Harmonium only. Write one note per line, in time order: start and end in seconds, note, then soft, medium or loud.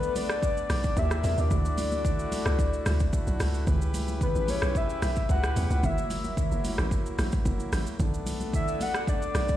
0.00 0.95 A3 medium
0.00 0.95 B3 medium
0.00 1.49 D4 medium
0.97 1.50 D#3 medium
0.97 1.50 A#3 medium
0.97 1.50 F4 medium
0.97 1.50 G4 medium
1.51 3.65 D3 medium
1.51 3.65 A3 medium
1.51 7.96 E4 medium
1.51 3.65 F#4 medium
3.67 5.81 C#3 medium
3.67 5.81 G4 medium
3.67 5.81 B4 medium
5.83 7.97 F#3 medium
5.83 7.97 A#3 medium
8.00 9.57 A3 medium
8.00 9.57 B3 medium
8.00 9.57 D4 medium